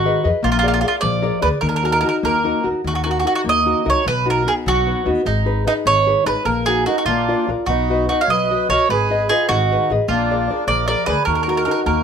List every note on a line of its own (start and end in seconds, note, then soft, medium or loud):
0.00 0.10 G#1 medium
0.00 0.23 D#3 medium
0.00 0.27 F#4 medium
0.05 0.23 G#4 soft
0.05 0.24 B4 soft
0.05 0.23 D#5 soft
0.24 0.31 F2 medium
0.24 0.40 G#4 soft
0.24 0.40 B4 soft
0.24 0.40 D#5 soft
0.43 0.82 A#1 medium
0.43 0.82 A#3 medium
0.43 0.51 F4 medium
0.52 0.58 F4 soft
0.59 0.66 F4 medium
0.63 0.83 G#4 soft
0.63 0.83 A#4 soft
0.63 0.83 D5 soft
0.68 0.72 F4 medium
0.74 0.80 F4 medium
0.81 0.87 F4 soft
0.81 1.16 G#4 soft
0.81 1.16 A#4 soft
0.81 1.16 D5 soft
0.88 0.95 F4 medium
1.01 1.29 A#1 medium
1.01 1.42 F3 soft
1.01 1.39 D5 medium
1.22 1.41 G#4 soft
1.22 1.41 A#4 soft
1.22 1.42 D5 soft
1.42 1.49 D2 medium
1.42 1.58 G#4 soft
1.42 1.58 A#4 soft
1.42 1.48 B4 medium
1.42 1.59 D5 soft
1.61 2.02 D#2 medium
1.61 2.02 D#3 medium
1.61 1.68 A#4 medium
1.69 1.75 A#4 soft
1.76 1.84 A#4 medium
1.82 2.02 D#4 soft
1.82 2.03 F#4 soft
1.82 2.03 A#4 soft
1.82 1.91 A#4 soft
1.92 1.99 A#4 medium
2.01 2.37 D#4 soft
2.01 2.37 F#4 soft
2.01 2.08 A#4 medium
2.01 2.37 A#4 soft
2.09 2.16 A#4 medium
2.23 2.50 D#2 medium
2.23 2.64 A#3 medium
2.23 2.67 A#4 medium
2.44 2.62 D#4 soft
2.44 2.62 F#4 soft
2.44 2.63 A#4 soft
2.63 2.72 D#2 medium
2.63 2.80 D#4 soft
2.63 2.80 F#4 soft
2.63 2.81 A#4 soft
2.84 3.24 D#2 medium
2.84 3.24 D#3 soft
2.84 2.94 F#4 medium
2.95 3.02 F#4 soft
3.04 3.23 D#4 soft
3.04 3.10 F#4 soft
3.04 3.24 F#4 soft
3.04 3.25 A#4 soft
3.11 3.17 F#4 soft
3.20 3.25 F#4 soft
3.24 3.58 D#4 soft
3.24 3.58 F#4 soft
3.24 3.33 F#4 medium
3.24 3.59 A#4 soft
3.35 3.41 F#4 medium
3.44 3.72 D#2 medium
3.44 3.85 A#3 medium
3.49 3.89 D#5 medium
3.66 3.84 D#4 soft
3.66 3.84 F#4 soft
3.66 3.85 A#4 soft
3.85 3.92 C2 medium
3.85 4.01 D#4 soft
3.85 4.02 F#4 soft
3.85 4.02 A#4 soft
3.90 4.06 C#5 medium
4.05 4.45 B1 medium
4.05 4.45 B2 soft
4.05 4.26 B4 medium
4.26 4.45 B3 soft
4.26 4.45 D#4 soft
4.26 4.45 F#4 soft
4.30 4.49 A#4 medium
4.46 4.79 B3 soft
4.46 4.79 D#4 soft
4.46 4.79 F#4 soft
4.46 4.53 G#4 medium
4.66 4.92 B1 medium
4.66 5.05 F#3 medium
4.66 5.09 F#4 medium
4.86 5.04 B3 soft
4.86 5.05 D#4 soft
4.86 5.05 F#4 soft
5.06 5.13 D#2 medium
5.06 5.22 B3 soft
5.06 5.22 D#4 soft
5.06 5.22 F#4 medium
5.25 5.65 G#1 medium
5.25 5.65 G#3 soft
5.25 5.64 D#4 soft
5.45 5.66 D#4 soft
5.45 5.66 G#4 soft
5.45 5.66 B4 soft
5.67 5.99 D#4 soft
5.67 5.73 D#4 medium
5.67 5.99 G#4 soft
5.67 5.99 B4 soft
5.85 6.12 G#1 medium
5.85 6.25 D#3 soft
5.85 6.24 C#5 medium
6.07 6.25 D#4 soft
6.07 6.25 G#4 soft
6.07 6.26 B4 soft
6.26 6.32 G#1 medium
6.26 6.42 D#4 soft
6.26 6.42 G#4 soft
6.26 6.44 B4 medium
6.26 6.42 B4 soft
6.45 6.85 A#1 medium
6.45 6.85 A#3 medium
6.45 6.65 A#4 medium
6.66 6.86 D#4 soft
6.66 6.87 F#4 soft
6.66 6.85 G#4 medium
6.66 6.87 A#4 soft
6.86 6.98 D#4 medium
6.86 7.03 D#4 soft
6.86 6.97 F#4 medium
6.86 7.03 F#4 soft
6.86 7.03 A#4 soft
6.98 7.05 D#4 soft
6.98 7.05 F#4 soft
7.06 7.33 A#1 medium
7.06 7.47 A#3 medium
7.06 7.49 D4 soft
7.06 7.49 F4 medium
7.29 7.48 F4 soft
7.29 7.47 A#4 soft
7.29 7.48 D5 soft
7.47 7.54 A#1 medium
7.47 7.64 F4 soft
7.47 7.64 A#4 soft
7.47 7.64 D5 soft
7.66 8.07 B1 medium
7.66 8.08 B3 medium
7.66 8.06 D#4 medium
7.66 8.08 F#4 soft
7.90 8.08 F#4 soft
7.90 8.09 B4 soft
7.90 8.09 D#5 soft
8.09 8.21 D#4 soft
8.09 8.21 F#4 medium
8.09 8.42 F#4 soft
8.09 8.42 B4 soft
8.09 8.42 D#5 soft
8.21 8.29 C#5 soft
8.21 8.28 F5 medium
8.28 8.54 B1 medium
8.28 8.68 F#3 soft
8.28 8.68 B4 medium
8.28 8.67 D#5 medium
8.51 8.69 F#4 soft
8.51 8.69 B4 soft
8.51 8.70 D#5 soft
8.69 8.75 B1 medium
8.69 8.85 F#4 soft
8.69 8.88 A#4 medium
8.69 8.86 B4 soft
8.69 8.90 C#5 medium
8.69 8.86 D#5 soft
8.89 9.28 G#1 medium
8.89 9.29 G#3 soft
8.89 9.28 G#4 medium
8.89 9.27 B4 medium
9.10 9.29 G#4 soft
9.10 9.30 B4 soft
9.10 9.30 D#5 soft
9.29 9.48 F4 medium
9.29 9.47 G#4 medium
9.29 9.62 G#4 soft
9.29 9.63 B4 soft
9.29 9.63 D#5 soft
9.49 9.75 G#1 medium
9.49 9.88 D#3 soft
9.49 9.91 D#4 soft
9.49 9.91 F#4 medium
9.71 9.90 G#4 soft
9.71 9.90 B4 soft
9.71 9.91 D#5 medium
9.90 9.96 A1 medium
9.90 10.06 G#4 soft
9.90 10.06 B4 soft
9.90 10.06 D#5 soft
10.08 10.47 A#1 medium
10.08 10.48 A#3 soft
10.08 10.64 D4 medium
10.08 10.64 F4 soft
10.31 10.49 G#4 soft
10.31 10.49 A#4 soft
10.31 10.50 D5 soft
10.50 10.81 G#4 soft
10.50 10.81 A#4 soft
10.50 10.82 D5 soft
10.67 10.93 A#1 medium
10.67 11.07 F3 medium
10.67 10.87 A#4 soft
10.67 10.86 D5 medium
10.88 11.05 G#4 soft
10.88 11.06 A#4 medium
10.88 11.06 A#4 soft
10.88 11.06 D5 medium
10.88 11.06 D5 soft
11.06 11.14 D2 medium
11.06 11.22 G#4 soft
11.06 11.25 G#4 medium
11.06 11.23 A#4 soft
11.06 11.25 B4 medium
11.06 11.23 D5 soft
11.25 11.66 D#2 medium
11.25 11.66 D#3 soft
11.25 11.83 F#4 soft
11.25 11.34 A#4 medium
11.35 11.42 A#4 soft
11.43 11.48 A#4 soft
11.48 11.66 D#4 soft
11.48 11.67 F#4 soft
11.48 11.67 A#4 soft
11.48 11.56 A#4 soft
11.57 11.64 A#4 medium
11.65 12.00 D#4 soft
11.65 12.00 F#4 soft
11.65 11.70 A#4 soft
11.65 12.00 A#4 soft
11.71 11.79 A#4 soft
11.86 12.03 D#2 medium
11.86 12.03 A#3 soft
11.86 12.03 F#4 soft
11.86 12.03 A#4 soft